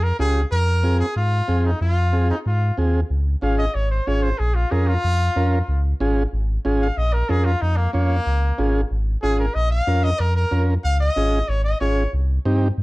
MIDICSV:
0, 0, Header, 1, 4, 480
1, 0, Start_track
1, 0, Tempo, 322754
1, 766, Time_signature, 4, 2, 24, 8
1, 19079, End_track
2, 0, Start_track
2, 0, Title_t, "Trumpet"
2, 0, Program_c, 0, 56
2, 49, Note_on_c, 0, 70, 96
2, 282, Note_off_c, 0, 70, 0
2, 291, Note_on_c, 0, 68, 97
2, 624, Note_off_c, 0, 68, 0
2, 769, Note_on_c, 0, 70, 111
2, 1439, Note_off_c, 0, 70, 0
2, 1491, Note_on_c, 0, 68, 97
2, 1713, Note_off_c, 0, 68, 0
2, 1734, Note_on_c, 0, 65, 97
2, 2460, Note_on_c, 0, 63, 79
2, 2483, Note_off_c, 0, 65, 0
2, 2690, Note_off_c, 0, 63, 0
2, 2699, Note_on_c, 0, 65, 96
2, 3365, Note_off_c, 0, 65, 0
2, 3428, Note_on_c, 0, 63, 79
2, 3532, Note_off_c, 0, 63, 0
2, 3671, Note_on_c, 0, 65, 76
2, 4109, Note_off_c, 0, 65, 0
2, 5096, Note_on_c, 0, 77, 78
2, 5319, Note_off_c, 0, 77, 0
2, 5328, Note_on_c, 0, 75, 90
2, 5571, Note_on_c, 0, 73, 84
2, 5594, Note_off_c, 0, 75, 0
2, 5805, Note_off_c, 0, 73, 0
2, 5817, Note_on_c, 0, 72, 76
2, 6049, Note_on_c, 0, 73, 86
2, 6071, Note_off_c, 0, 72, 0
2, 6286, Note_on_c, 0, 72, 77
2, 6308, Note_off_c, 0, 73, 0
2, 6525, Note_on_c, 0, 68, 86
2, 6547, Note_off_c, 0, 72, 0
2, 6767, Note_on_c, 0, 65, 82
2, 6790, Note_off_c, 0, 68, 0
2, 7009, Note_on_c, 0, 68, 84
2, 7031, Note_off_c, 0, 65, 0
2, 7248, Note_on_c, 0, 65, 111
2, 7270, Note_off_c, 0, 68, 0
2, 8647, Note_off_c, 0, 65, 0
2, 10138, Note_on_c, 0, 77, 80
2, 10371, Note_on_c, 0, 75, 90
2, 10394, Note_off_c, 0, 77, 0
2, 10609, Note_on_c, 0, 70, 87
2, 10632, Note_off_c, 0, 75, 0
2, 10847, Note_on_c, 0, 68, 92
2, 10869, Note_off_c, 0, 70, 0
2, 11080, Note_on_c, 0, 65, 91
2, 11102, Note_off_c, 0, 68, 0
2, 11322, Note_on_c, 0, 63, 97
2, 11344, Note_off_c, 0, 65, 0
2, 11549, Note_on_c, 0, 58, 84
2, 11572, Note_off_c, 0, 63, 0
2, 11787, Note_off_c, 0, 58, 0
2, 11795, Note_on_c, 0, 58, 100
2, 13199, Note_off_c, 0, 58, 0
2, 13724, Note_on_c, 0, 68, 94
2, 13959, Note_off_c, 0, 68, 0
2, 13967, Note_on_c, 0, 70, 84
2, 14201, Note_on_c, 0, 75, 98
2, 14223, Note_off_c, 0, 70, 0
2, 14430, Note_off_c, 0, 75, 0
2, 14439, Note_on_c, 0, 77, 104
2, 14926, Note_on_c, 0, 75, 104
2, 14949, Note_off_c, 0, 77, 0
2, 15168, Note_on_c, 0, 70, 97
2, 15191, Note_off_c, 0, 75, 0
2, 15401, Note_off_c, 0, 70, 0
2, 15407, Note_on_c, 0, 70, 95
2, 15872, Note_off_c, 0, 70, 0
2, 16130, Note_on_c, 0, 77, 106
2, 16361, Note_off_c, 0, 77, 0
2, 16368, Note_on_c, 0, 75, 101
2, 17083, Note_on_c, 0, 73, 89
2, 17106, Note_off_c, 0, 75, 0
2, 17307, Note_off_c, 0, 73, 0
2, 17316, Note_on_c, 0, 75, 90
2, 17549, Note_off_c, 0, 75, 0
2, 17558, Note_on_c, 0, 73, 93
2, 18026, Note_off_c, 0, 73, 0
2, 19079, End_track
3, 0, Start_track
3, 0, Title_t, "Transistor combo organ"
3, 0, Program_c, 1, 18
3, 283, Note_on_c, 1, 61, 68
3, 286, Note_on_c, 1, 65, 64
3, 297, Note_on_c, 1, 67, 73
3, 621, Note_off_c, 1, 61, 0
3, 622, Note_off_c, 1, 65, 0
3, 627, Note_off_c, 1, 67, 0
3, 1239, Note_on_c, 1, 60, 72
3, 1243, Note_on_c, 1, 65, 67
3, 1250, Note_on_c, 1, 68, 80
3, 1579, Note_off_c, 1, 60, 0
3, 1581, Note_off_c, 1, 65, 0
3, 1585, Note_off_c, 1, 68, 0
3, 2197, Note_on_c, 1, 60, 68
3, 2208, Note_on_c, 1, 65, 63
3, 2210, Note_on_c, 1, 68, 75
3, 2540, Note_off_c, 1, 60, 0
3, 2545, Note_off_c, 1, 65, 0
3, 2546, Note_off_c, 1, 68, 0
3, 3161, Note_on_c, 1, 60, 71
3, 3168, Note_on_c, 1, 65, 69
3, 3172, Note_on_c, 1, 68, 72
3, 3502, Note_off_c, 1, 60, 0
3, 3506, Note_off_c, 1, 65, 0
3, 3508, Note_off_c, 1, 68, 0
3, 4126, Note_on_c, 1, 60, 63
3, 4138, Note_on_c, 1, 65, 60
3, 4140, Note_on_c, 1, 68, 78
3, 4465, Note_off_c, 1, 60, 0
3, 4471, Note_off_c, 1, 65, 0
3, 4472, Note_off_c, 1, 68, 0
3, 5089, Note_on_c, 1, 61, 74
3, 5098, Note_on_c, 1, 65, 66
3, 5105, Note_on_c, 1, 68, 83
3, 5427, Note_off_c, 1, 61, 0
3, 5431, Note_off_c, 1, 65, 0
3, 5435, Note_off_c, 1, 68, 0
3, 6054, Note_on_c, 1, 61, 72
3, 6060, Note_on_c, 1, 65, 61
3, 6066, Note_on_c, 1, 68, 74
3, 6389, Note_off_c, 1, 61, 0
3, 6393, Note_off_c, 1, 65, 0
3, 6396, Note_off_c, 1, 68, 0
3, 7006, Note_on_c, 1, 61, 79
3, 7012, Note_on_c, 1, 65, 73
3, 7018, Note_on_c, 1, 70, 84
3, 7346, Note_off_c, 1, 61, 0
3, 7349, Note_off_c, 1, 65, 0
3, 7352, Note_off_c, 1, 70, 0
3, 7969, Note_on_c, 1, 61, 82
3, 7978, Note_on_c, 1, 65, 79
3, 7980, Note_on_c, 1, 70, 91
3, 8307, Note_off_c, 1, 61, 0
3, 8312, Note_off_c, 1, 65, 0
3, 8313, Note_off_c, 1, 70, 0
3, 8929, Note_on_c, 1, 61, 87
3, 8937, Note_on_c, 1, 65, 81
3, 8941, Note_on_c, 1, 68, 101
3, 9267, Note_off_c, 1, 61, 0
3, 9271, Note_off_c, 1, 65, 0
3, 9273, Note_off_c, 1, 68, 0
3, 9888, Note_on_c, 1, 61, 88
3, 9897, Note_on_c, 1, 65, 82
3, 9900, Note_on_c, 1, 68, 96
3, 10226, Note_off_c, 1, 61, 0
3, 10230, Note_off_c, 1, 65, 0
3, 10232, Note_off_c, 1, 68, 0
3, 10841, Note_on_c, 1, 61, 73
3, 10847, Note_on_c, 1, 65, 72
3, 10850, Note_on_c, 1, 70, 80
3, 11182, Note_off_c, 1, 61, 0
3, 11185, Note_off_c, 1, 65, 0
3, 11187, Note_off_c, 1, 70, 0
3, 11797, Note_on_c, 1, 61, 68
3, 11806, Note_on_c, 1, 65, 62
3, 11810, Note_on_c, 1, 73, 82
3, 12140, Note_off_c, 1, 61, 0
3, 12144, Note_off_c, 1, 65, 0
3, 12146, Note_off_c, 1, 73, 0
3, 12763, Note_on_c, 1, 61, 88
3, 12770, Note_on_c, 1, 65, 86
3, 12774, Note_on_c, 1, 68, 95
3, 13102, Note_off_c, 1, 61, 0
3, 13106, Note_off_c, 1, 65, 0
3, 13108, Note_off_c, 1, 68, 0
3, 13726, Note_on_c, 1, 61, 72
3, 13734, Note_on_c, 1, 65, 67
3, 13740, Note_on_c, 1, 68, 79
3, 14063, Note_off_c, 1, 61, 0
3, 14067, Note_off_c, 1, 65, 0
3, 14070, Note_off_c, 1, 68, 0
3, 14682, Note_on_c, 1, 61, 74
3, 14689, Note_on_c, 1, 65, 68
3, 14697, Note_on_c, 1, 70, 87
3, 15021, Note_off_c, 1, 61, 0
3, 15024, Note_off_c, 1, 65, 0
3, 15028, Note_off_c, 1, 70, 0
3, 15634, Note_on_c, 1, 61, 78
3, 15641, Note_on_c, 1, 65, 66
3, 15646, Note_on_c, 1, 70, 84
3, 15976, Note_off_c, 1, 61, 0
3, 15980, Note_off_c, 1, 65, 0
3, 15982, Note_off_c, 1, 70, 0
3, 16600, Note_on_c, 1, 61, 74
3, 16609, Note_on_c, 1, 65, 67
3, 16616, Note_on_c, 1, 68, 86
3, 16938, Note_off_c, 1, 61, 0
3, 16943, Note_off_c, 1, 65, 0
3, 16946, Note_off_c, 1, 68, 0
3, 17561, Note_on_c, 1, 61, 69
3, 17567, Note_on_c, 1, 65, 68
3, 17574, Note_on_c, 1, 68, 75
3, 17898, Note_off_c, 1, 61, 0
3, 17902, Note_off_c, 1, 65, 0
3, 17905, Note_off_c, 1, 68, 0
3, 18522, Note_on_c, 1, 60, 91
3, 18525, Note_on_c, 1, 63, 81
3, 18531, Note_on_c, 1, 67, 102
3, 18858, Note_off_c, 1, 60, 0
3, 18860, Note_off_c, 1, 63, 0
3, 18863, Note_off_c, 1, 67, 0
3, 19079, End_track
4, 0, Start_track
4, 0, Title_t, "Sub bass"
4, 0, Program_c, 2, 38
4, 0, Note_on_c, 2, 41, 90
4, 188, Note_off_c, 2, 41, 0
4, 288, Note_on_c, 2, 37, 92
4, 671, Note_off_c, 2, 37, 0
4, 769, Note_on_c, 2, 41, 107
4, 1537, Note_off_c, 2, 41, 0
4, 1725, Note_on_c, 2, 44, 86
4, 2111, Note_off_c, 2, 44, 0
4, 2211, Note_on_c, 2, 41, 94
4, 2595, Note_off_c, 2, 41, 0
4, 2691, Note_on_c, 2, 41, 106
4, 3460, Note_off_c, 2, 41, 0
4, 3656, Note_on_c, 2, 44, 96
4, 4039, Note_off_c, 2, 44, 0
4, 4134, Note_on_c, 2, 39, 91
4, 4518, Note_off_c, 2, 39, 0
4, 4613, Note_on_c, 2, 37, 98
4, 4997, Note_off_c, 2, 37, 0
4, 5092, Note_on_c, 2, 32, 101
4, 5476, Note_off_c, 2, 32, 0
4, 5576, Note_on_c, 2, 32, 95
4, 5959, Note_off_c, 2, 32, 0
4, 6060, Note_on_c, 2, 32, 90
4, 6441, Note_off_c, 2, 32, 0
4, 6539, Note_on_c, 2, 34, 105
4, 6921, Note_off_c, 2, 34, 0
4, 7017, Note_on_c, 2, 41, 93
4, 7400, Note_off_c, 2, 41, 0
4, 7497, Note_on_c, 2, 41, 96
4, 7879, Note_off_c, 2, 41, 0
4, 7975, Note_on_c, 2, 41, 91
4, 8358, Note_off_c, 2, 41, 0
4, 8452, Note_on_c, 2, 37, 100
4, 8836, Note_off_c, 2, 37, 0
4, 8928, Note_on_c, 2, 32, 100
4, 9314, Note_off_c, 2, 32, 0
4, 9413, Note_on_c, 2, 32, 95
4, 9797, Note_off_c, 2, 32, 0
4, 9893, Note_on_c, 2, 32, 89
4, 10277, Note_off_c, 2, 32, 0
4, 10371, Note_on_c, 2, 34, 101
4, 10755, Note_off_c, 2, 34, 0
4, 10853, Note_on_c, 2, 41, 97
4, 11237, Note_off_c, 2, 41, 0
4, 11333, Note_on_c, 2, 41, 88
4, 11716, Note_off_c, 2, 41, 0
4, 11813, Note_on_c, 2, 41, 86
4, 12196, Note_off_c, 2, 41, 0
4, 12290, Note_on_c, 2, 37, 97
4, 12674, Note_off_c, 2, 37, 0
4, 12771, Note_on_c, 2, 32, 99
4, 13154, Note_off_c, 2, 32, 0
4, 13251, Note_on_c, 2, 32, 95
4, 13634, Note_off_c, 2, 32, 0
4, 13730, Note_on_c, 2, 32, 87
4, 14113, Note_off_c, 2, 32, 0
4, 14210, Note_on_c, 2, 34, 101
4, 14593, Note_off_c, 2, 34, 0
4, 14683, Note_on_c, 2, 41, 95
4, 15069, Note_off_c, 2, 41, 0
4, 15164, Note_on_c, 2, 41, 95
4, 15549, Note_off_c, 2, 41, 0
4, 15643, Note_on_c, 2, 41, 94
4, 16028, Note_off_c, 2, 41, 0
4, 16127, Note_on_c, 2, 37, 109
4, 16510, Note_off_c, 2, 37, 0
4, 16605, Note_on_c, 2, 32, 100
4, 16989, Note_off_c, 2, 32, 0
4, 17083, Note_on_c, 2, 32, 99
4, 17467, Note_off_c, 2, 32, 0
4, 17562, Note_on_c, 2, 32, 87
4, 17947, Note_off_c, 2, 32, 0
4, 18044, Note_on_c, 2, 36, 100
4, 18428, Note_off_c, 2, 36, 0
4, 18519, Note_on_c, 2, 43, 97
4, 18905, Note_off_c, 2, 43, 0
4, 19001, Note_on_c, 2, 43, 93
4, 19079, Note_off_c, 2, 43, 0
4, 19079, End_track
0, 0, End_of_file